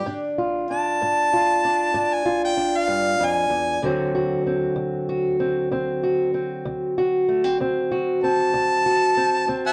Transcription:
0, 0, Header, 1, 3, 480
1, 0, Start_track
1, 0, Tempo, 628272
1, 46, Time_signature, 12, 3, 24, 8
1, 7431, End_track
2, 0, Start_track
2, 0, Title_t, "Harmonica"
2, 0, Program_c, 0, 22
2, 0, Note_on_c, 0, 67, 110
2, 269, Note_off_c, 0, 67, 0
2, 542, Note_on_c, 0, 81, 121
2, 1632, Note_on_c, 0, 80, 92
2, 1643, Note_off_c, 0, 81, 0
2, 1853, Note_off_c, 0, 80, 0
2, 1869, Note_on_c, 0, 79, 91
2, 2117, Note_on_c, 0, 77, 100
2, 2129, Note_off_c, 0, 79, 0
2, 2482, Note_on_c, 0, 80, 120
2, 2494, Note_off_c, 0, 77, 0
2, 2931, Note_off_c, 0, 80, 0
2, 6297, Note_on_c, 0, 81, 121
2, 7342, Note_off_c, 0, 81, 0
2, 7383, Note_on_c, 0, 76, 62
2, 7383, Note_on_c, 0, 78, 62
2, 7383, Note_on_c, 0, 81, 88
2, 7430, Note_off_c, 0, 76, 0
2, 7431, Note_off_c, 0, 78, 0
2, 7431, Note_off_c, 0, 81, 0
2, 7431, End_track
3, 0, Start_track
3, 0, Title_t, "Steel-string acoustic guitar"
3, 0, Program_c, 1, 25
3, 0, Note_on_c, 1, 50, 62
3, 46, Note_on_c, 1, 44, 77
3, 52, Note_on_c, 1, 62, 64
3, 292, Note_on_c, 1, 65, 59
3, 478, Note_off_c, 1, 44, 0
3, 536, Note_off_c, 1, 62, 0
3, 539, Note_on_c, 1, 62, 61
3, 778, Note_on_c, 1, 44, 79
3, 1009, Note_off_c, 1, 65, 0
3, 1019, Note_on_c, 1, 65, 77
3, 1204, Note_off_c, 1, 44, 0
3, 1255, Note_off_c, 1, 62, 0
3, 1258, Note_on_c, 1, 62, 62
3, 1480, Note_off_c, 1, 62, 0
3, 1483, Note_on_c, 1, 44, 82
3, 1483, Note_on_c, 1, 62, 69
3, 1714, Note_off_c, 1, 65, 0
3, 1723, Note_on_c, 1, 65, 73
3, 1917, Note_off_c, 1, 44, 0
3, 1960, Note_off_c, 1, 62, 0
3, 1963, Note_on_c, 1, 62, 58
3, 2198, Note_on_c, 1, 43, 60
3, 2438, Note_off_c, 1, 43, 0
3, 2441, Note_on_c, 1, 41, 75
3, 2669, Note_off_c, 1, 41, 0
3, 2673, Note_on_c, 1, 40, 65
3, 2897, Note_off_c, 1, 65, 0
3, 2916, Note_off_c, 1, 50, 0
3, 2917, Note_off_c, 1, 40, 0
3, 2920, Note_on_c, 1, 38, 79
3, 2926, Note_on_c, 1, 50, 67
3, 2936, Note_on_c, 1, 54, 65
3, 2937, Note_off_c, 1, 62, 0
3, 2940, Note_on_c, 1, 60, 68
3, 2946, Note_on_c, 1, 66, 72
3, 3166, Note_off_c, 1, 66, 0
3, 3169, Note_on_c, 1, 66, 65
3, 3356, Note_off_c, 1, 38, 0
3, 3409, Note_off_c, 1, 60, 0
3, 3412, Note_on_c, 1, 60, 64
3, 3635, Note_on_c, 1, 38, 80
3, 3885, Note_off_c, 1, 66, 0
3, 3888, Note_on_c, 1, 66, 71
3, 4073, Note_off_c, 1, 38, 0
3, 4122, Note_off_c, 1, 60, 0
3, 4125, Note_on_c, 1, 60, 62
3, 4366, Note_on_c, 1, 38, 79
3, 4368, Note_off_c, 1, 60, 0
3, 4371, Note_on_c, 1, 60, 64
3, 4600, Note_off_c, 1, 66, 0
3, 4610, Note_on_c, 1, 66, 66
3, 4799, Note_off_c, 1, 38, 0
3, 4836, Note_off_c, 1, 60, 0
3, 4845, Note_on_c, 1, 60, 57
3, 5084, Note_on_c, 1, 38, 75
3, 5323, Note_off_c, 1, 66, 0
3, 5332, Note_on_c, 1, 66, 71
3, 5518, Note_off_c, 1, 38, 0
3, 5563, Note_off_c, 1, 60, 0
3, 5566, Note_on_c, 1, 57, 63
3, 5684, Note_off_c, 1, 57, 0
3, 5684, Note_on_c, 1, 60, 51
3, 5781, Note_off_c, 1, 66, 0
3, 5806, Note_off_c, 1, 60, 0
3, 5809, Note_on_c, 1, 38, 79
3, 5814, Note_on_c, 1, 60, 62
3, 6047, Note_on_c, 1, 66, 63
3, 6240, Note_off_c, 1, 38, 0
3, 6283, Note_off_c, 1, 60, 0
3, 6293, Note_on_c, 1, 60, 63
3, 6524, Note_on_c, 1, 38, 85
3, 6759, Note_off_c, 1, 66, 0
3, 6769, Note_on_c, 1, 66, 70
3, 6958, Note_off_c, 1, 38, 0
3, 6998, Note_off_c, 1, 60, 0
3, 7007, Note_on_c, 1, 60, 62
3, 7235, Note_off_c, 1, 60, 0
3, 7242, Note_on_c, 1, 38, 75
3, 7246, Note_on_c, 1, 60, 65
3, 7431, Note_off_c, 1, 38, 0
3, 7431, Note_off_c, 1, 50, 0
3, 7431, Note_off_c, 1, 54, 0
3, 7431, Note_off_c, 1, 60, 0
3, 7431, Note_off_c, 1, 66, 0
3, 7431, End_track
0, 0, End_of_file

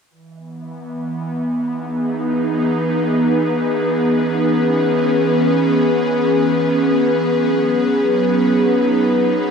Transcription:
0, 0, Header, 1, 2, 480
1, 0, Start_track
1, 0, Key_signature, 4, "major"
1, 0, Tempo, 500000
1, 9126, End_track
2, 0, Start_track
2, 0, Title_t, "Analog synth pad"
2, 0, Program_c, 0, 89
2, 107, Note_on_c, 0, 52, 71
2, 356, Note_on_c, 0, 59, 69
2, 1572, Note_on_c, 0, 63, 69
2, 1674, Note_on_c, 0, 71, 69
2, 1679, Note_on_c, 0, 68, 67
2, 3874, Note_on_c, 0, 61, 64
2, 4925, Note_off_c, 0, 63, 0
2, 6986, Note_off_c, 0, 52, 0
2, 7000, Note_on_c, 0, 54, 71
2, 7705, Note_on_c, 0, 63, 69
2, 8366, Note_off_c, 0, 61, 0
2, 9126, Note_off_c, 0, 54, 0
2, 9126, Note_off_c, 0, 59, 0
2, 9126, Note_off_c, 0, 63, 0
2, 9126, Note_off_c, 0, 68, 0
2, 9126, Note_off_c, 0, 71, 0
2, 9126, End_track
0, 0, End_of_file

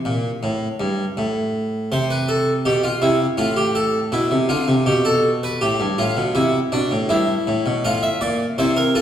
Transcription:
0, 0, Header, 1, 2, 480
1, 0, Start_track
1, 0, Key_signature, -1, "major"
1, 0, Tempo, 739827
1, 1243, Time_signature, 4, 2, 24, 8
1, 5849, End_track
2, 0, Start_track
2, 0, Title_t, "Harpsichord"
2, 0, Program_c, 0, 6
2, 35, Note_on_c, 0, 46, 71
2, 187, Note_off_c, 0, 46, 0
2, 278, Note_on_c, 0, 45, 75
2, 429, Note_off_c, 0, 45, 0
2, 517, Note_on_c, 0, 43, 60
2, 668, Note_off_c, 0, 43, 0
2, 762, Note_on_c, 0, 45, 72
2, 1228, Note_off_c, 0, 45, 0
2, 1244, Note_on_c, 0, 48, 59
2, 1245, Note_on_c, 0, 72, 66
2, 1361, Note_off_c, 0, 72, 0
2, 1365, Note_on_c, 0, 71, 72
2, 1481, Note_off_c, 0, 71, 0
2, 1483, Note_on_c, 0, 69, 69
2, 1631, Note_off_c, 0, 69, 0
2, 1708, Note_off_c, 0, 48, 0
2, 1722, Note_on_c, 0, 47, 58
2, 1723, Note_on_c, 0, 67, 76
2, 1838, Note_off_c, 0, 67, 0
2, 1839, Note_on_c, 0, 65, 73
2, 1869, Note_off_c, 0, 47, 0
2, 1955, Note_off_c, 0, 65, 0
2, 1957, Note_on_c, 0, 64, 78
2, 1959, Note_on_c, 0, 48, 70
2, 2106, Note_off_c, 0, 64, 0
2, 2107, Note_off_c, 0, 48, 0
2, 2190, Note_on_c, 0, 45, 65
2, 2192, Note_on_c, 0, 65, 88
2, 2311, Note_off_c, 0, 65, 0
2, 2313, Note_on_c, 0, 67, 72
2, 2431, Note_off_c, 0, 67, 0
2, 2435, Note_on_c, 0, 69, 71
2, 2583, Note_off_c, 0, 69, 0
2, 2657, Note_off_c, 0, 45, 0
2, 2674, Note_on_c, 0, 47, 63
2, 2676, Note_on_c, 0, 64, 75
2, 2791, Note_off_c, 0, 47, 0
2, 2797, Note_on_c, 0, 48, 61
2, 2824, Note_off_c, 0, 64, 0
2, 2912, Note_off_c, 0, 48, 0
2, 2913, Note_on_c, 0, 50, 73
2, 2914, Note_on_c, 0, 65, 86
2, 3030, Note_off_c, 0, 50, 0
2, 3036, Note_on_c, 0, 48, 61
2, 3064, Note_off_c, 0, 65, 0
2, 3152, Note_off_c, 0, 48, 0
2, 3155, Note_on_c, 0, 47, 59
2, 3156, Note_on_c, 0, 67, 69
2, 3273, Note_off_c, 0, 67, 0
2, 3277, Note_on_c, 0, 69, 86
2, 3427, Note_off_c, 0, 69, 0
2, 3525, Note_on_c, 0, 71, 80
2, 3624, Note_off_c, 0, 47, 0
2, 3639, Note_off_c, 0, 71, 0
2, 3641, Note_on_c, 0, 67, 66
2, 3644, Note_on_c, 0, 45, 59
2, 3759, Note_off_c, 0, 45, 0
2, 3762, Note_on_c, 0, 43, 55
2, 3790, Note_off_c, 0, 67, 0
2, 3877, Note_off_c, 0, 43, 0
2, 3882, Note_on_c, 0, 65, 80
2, 3885, Note_on_c, 0, 45, 61
2, 3999, Note_off_c, 0, 45, 0
2, 4002, Note_on_c, 0, 47, 56
2, 4030, Note_off_c, 0, 65, 0
2, 4118, Note_off_c, 0, 47, 0
2, 4119, Note_on_c, 0, 48, 69
2, 4119, Note_on_c, 0, 64, 89
2, 4268, Note_off_c, 0, 64, 0
2, 4269, Note_off_c, 0, 48, 0
2, 4361, Note_on_c, 0, 47, 59
2, 4363, Note_on_c, 0, 62, 74
2, 4477, Note_off_c, 0, 47, 0
2, 4485, Note_on_c, 0, 45, 57
2, 4511, Note_off_c, 0, 62, 0
2, 4600, Note_off_c, 0, 45, 0
2, 4601, Note_on_c, 0, 43, 64
2, 4602, Note_on_c, 0, 64, 82
2, 4750, Note_off_c, 0, 43, 0
2, 4849, Note_on_c, 0, 45, 70
2, 4961, Note_off_c, 0, 45, 0
2, 4969, Note_on_c, 0, 47, 60
2, 5067, Note_off_c, 0, 64, 0
2, 5081, Note_off_c, 0, 47, 0
2, 5090, Note_on_c, 0, 45, 63
2, 5090, Note_on_c, 0, 77, 79
2, 5092, Note_on_c, 0, 65, 66
2, 5201, Note_off_c, 0, 77, 0
2, 5208, Note_on_c, 0, 76, 77
2, 5235, Note_off_c, 0, 45, 0
2, 5320, Note_off_c, 0, 76, 0
2, 5326, Note_on_c, 0, 46, 58
2, 5327, Note_on_c, 0, 74, 71
2, 5474, Note_off_c, 0, 46, 0
2, 5474, Note_off_c, 0, 74, 0
2, 5552, Note_off_c, 0, 65, 0
2, 5568, Note_on_c, 0, 48, 61
2, 5570, Note_on_c, 0, 64, 68
2, 5571, Note_on_c, 0, 72, 80
2, 5683, Note_off_c, 0, 72, 0
2, 5687, Note_on_c, 0, 70, 64
2, 5717, Note_off_c, 0, 64, 0
2, 5801, Note_off_c, 0, 70, 0
2, 5808, Note_on_c, 0, 69, 78
2, 5809, Note_on_c, 0, 65, 67
2, 5849, Note_off_c, 0, 48, 0
2, 5849, Note_off_c, 0, 65, 0
2, 5849, Note_off_c, 0, 69, 0
2, 5849, End_track
0, 0, End_of_file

